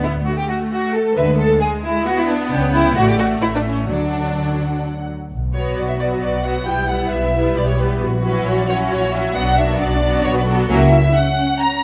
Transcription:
Already playing: double bass section D2, cello section D3, viola section B3
0.03 violin section E4
0.26 viola section A3, violin section F#4
0.38 violin section G4
0.49 violin section F#4
0.71 violin section F#4
0.94 violin section A4
1.16 double bass section D2, cello section D3, viola section G#3, violin section B4 E5
1.38 violin section A4
1.60 violin section G#4
1.83 violin section E4
2.05 viola section B3, violin section F#4
2.18 violin section E4
2.28 violin section D4
2.50 double bass section C#2, cello section C#3, violin section G5
2.73 violin section E4
2.96 double bass section A1, cello section A2, viola section A3, violin section F#4 D5
3.08 violin section G4
3.18 violin section F#4
3.41 double bass section A1, cello section A2, violin section E4 E5
3.54 violin section D4
3.65 violin section C#4
3.88 double bass section D2, cello section D3, viola section F#3, violin section D4 F#5
5.30 double bass section B1
5.53 viola section F#3 B3, violin section F#4 B4 C#5
5.76 double bass section B1, cello section F#4, violin section D5
5.88 violin section E5
5.99 viola section F#3 B3, violin section F#4 B4 D5
6.21 double bass section B1, cello section F#4, violin section D5
6.44 viola section F#3 B3, violin section F#4 B4 F#5
6.66 double bass section B1, viola section G3 B3, cello section E4, violin section E4 B4 G5
6.89 viola section G3 B3, violin section E4 B4 F#5
7.12 double bass section B1, violin section E5
7.34 viola section G3 B3, violin section E4 B4
7.57 double bass section B1, cello section G4, violin section D5
7.68 violin section C#5
7.79 viola section G3 B3, violin section E4 B4
8.01 double bass section A#1, cello section F#4
8.24 viola section F#3 C#4, violin section E4 F#4 B4
8.46 double bass section A#1, violin section C#5
8.58 violin section D5
8.68 viola section F#3 C#4, violin section E4 F#4 C#5
8.91 double bass section A#1, violin section C#5
9.13 viola section F#3 C#4, violin section E4 F#4 E5
9.35 double bass section B1, viola section F#3 B3, cello section D4, violin section D4 F#4 F#5
9.57 viola section F#3 B3, violin section D4 F#4 E5
9.80 double bass section B1, violin section D5
10.03 viola section F#3 B3, violin section D4 F#4
10.25 double bass section B1, cello section F#4, violin section C#5
10.37 violin section B4
10.47 viola section F#3 B3, violin section D4 F#4 A4
10.69 double bass section C#2, viola section F#3 A#3, violin section C#4 F#4 E5, cello section E4
11.14 cello section C#4, violin section F#5
11.60 violin section A#5

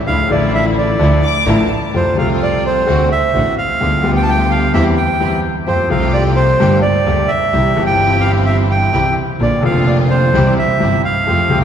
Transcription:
0.06 grand piano D2 D3 F3 A3 E4, double bass D2, string section F3 D4 E4, bandoneon F5
0.29 double bass A1, grand piano A1 A2 D3 F3 A3 E4, string section F3 D4 E4, bandoneon D5
0.55 bandoneon E5
0.78 bandoneon D5
0.99 double bass D2, grand piano D2 D3 F3 A3 E4, string section F3 D4 E4
1.24 violin section D6
1.46 grand piano A1 A2 D3 F3 A3 E4, double bass A1, string section F3 D4 E4, violin section A#5
1.59 violin section A5
1.94 double bass F2, grand piano F2 C3 F3 A3 F4, string section A3 C4 F4, bandoneon C5
2.15 double bass C2, grand piano C2 C3 F3 A3, string section A3 C4 F4, bandoneon F5
2.19 grand piano F4
2.42 bandoneon D5
2.66 bandoneon C5
2.87 grand piano D2 D3 A3 C4 F#4, double bass D2, string section C4 D4 F#4
3.12 bandoneon E5
3.34 grand piano A1 A2 D3 A3 C4 F#4, double bass A1, string section C4 D4 F#4
3.58 bandoneon F5
3.80 double bass D2, grand piano D2 D3 G3 B3 F4, string section B3 F4 G4
4.03 double bass D2, grand piano D2 D3 G3 B3 F4, string section B3 F4 G4
4.17 bandoneon G5
4.23 bandoneon A5
4.29 bandoneon G5
4.51 bandoneon F5
4.73 double bass E2, grand piano E2 E3 G3 C4 G4, string section C4 E4 G4, bandoneon E5
4.97 bandoneon G5
5.20 grand piano E2 E3 G3 C4 G4, double bass E2, string section C4 E4 G4
5.67 double bass F2, grand piano F2 F3 A3 C4 G4, string section A3 F4 G4, bandoneon C5
5.89 double bass C2, grand piano C2 C3 F3 A3 C4 G4, string section A3 F4 G4, bandoneon F5
6.13 bandoneon D5
6.36 bandoneon C5
6.59 double bass G1, grand piano G1 G2 D3 G3 A#3 G4, string section A#3 D4 G4
6.82 bandoneon D5
7.06 double bass D2, grand piano D2 D3 G3 A#3 G4, string section A#3 D4 G4
7.28 bandoneon E5
7.53 double bass C2, grand piano C2 C3 E3 G3 C4 G4, string section C4 E4 G4
7.75 double bass G1, grand piano G1 G2 E3 G3 C4, string section C4 E4 G4
7.79 grand piano G4
7.86 bandoneon G5
8.21 bandoneon F5
8.46 bandoneon E5
8.71 bandoneon G5
8.93 double bass C2, grand piano C2 C3 E3 G3 C4 G4, string section C4 E4 G4
9.40 double bass A#1, grand piano A#1 A#2 D3 F3 A#3 F4, string section A#3 D4 F4, bandoneon D5
9.61 grand piano F1 F2 D3 F3 A#3, double bass F1, string section A#3 D4 F4, bandoneon F5
9.65 grand piano F4
9.87 bandoneon D5
10.10 bandoneon C5
10.34 double bass C2, grand piano C2 C3 E3 G3 C4 G4, string section C4 E4 G4
10.59 bandoneon E5
10.80 grand piano G1 G2 E3 G3 C4 G4, double bass G1, string section C4 E4 G4
11.05 bandoneon F5
11.27 grand piano F2 F3 A3 C4 G4, double bass F2, string section A3 F4 G4
11.48 grand piano C2 C3 F3 A3 C4 G4, double bass C2, string section A3 F4 G4

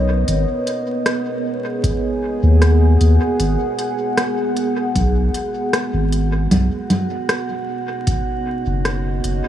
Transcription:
Already playing: sub bass B1, ambient pad B3 A#4 C#5 D#5
0.28 sub bass G#1, closed hi-hat
0.67 closed hi-hat
0.94 ambient pad G#4
1.06 cross-stick, closed hi-hat
1.84 ambient pad F#5, kick, closed hi-hat
2.43 sub bass D#2
2.62 cross-stick, closed hi-hat
3.01 sub bass D#2, closed hi-hat
3.39 sub bass G#1, closed hi-hat
3.79 closed hi-hat
4.17 cross-stick, closed hi-hat
4.57 closed hi-hat
4.95 sub bass B1, kick, closed hi-hat
5.34 closed hi-hat
5.73 cross-stick, closed hi-hat
5.94 sub bass G#1
6.12 closed hi-hat
6.51 sub bass B1, ambient pad B3, synth texture F#4, closed hi-hat, low conga
6.88 ambient pad C#5, closed hi-hat, low conga
7.15 ambient pad A#4 D#5
7.29 cross-stick, closed hi-hat
8.07 kick, closed hi-hat
8.66 sub bass F#1
8.85 cross-stick, closed hi-hat
9.24 sub bass F#1, closed hi-hat

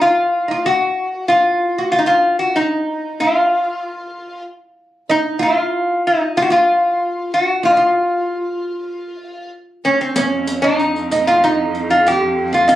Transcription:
0.01 resonator guitar played with a steel bar F4, oud F4
0.48 oud D#4 F4
0.66 oud F#4, resonator guitar played with a steel bar F#4
1.28 resonator guitar played with a steel bar F4, oud F4
1.78 oud F#4
1.92 resonator guitar played with a steel bar F4, oud F4
1.99 resonator guitar played with a steel bar D#4
2.06 oud F4, resonator guitar played with a steel bar F4
2.39 resonator guitar played with a steel bar F#4
2.56 resonator guitar played with a steel bar D#4, oud D#4
3.20 resonator guitar played with a steel bar F4, oud F4
5.10 oud D#4, resonator guitar played with a steel bar D#4
5.39 oud F4, resonator guitar played with a steel bar F4
6.07 resonator guitar played with a steel bar D#4
6.37 oud F4, resonator guitar played with a steel bar F4
6.42 resonator guitar played with a steel bar F#4
6.50 oud F4, resonator guitar played with a steel bar F4
7.34 resonator guitar played with a steel bar F#4
7.63 oud F4, resonator guitar played with a steel bar F4
7.70 oud D#4
7.77 oud F4
9.85 resonator guitar played with a steel bar C#4, oud C#4
10.01 resonator guitar played with a steel bar C4
10.16 cello F2, resonator guitar played with a steel bar C#4, oud C#4, riq
10.47 riq
10.62 resonator guitar played with a steel bar D#4, oud D#4
10.79 riq
10.96 riq
11.11 oud D#4, riq
11.27 resonator guitar played with a steel bar F4, oud F4, riq
11.44 resonator guitar played with a steel bar D#4, oud D#4
11.75 riq
11.90 resonator guitar played with a steel bar F4, riq
12.07 resonator guitar played with a steel bar G4, oud G4, riq
12.53 oud F4, resonator guitar played with a steel bar F4, riq
12.68 oud D#4, resonator guitar played with a steel bar D#4, riq

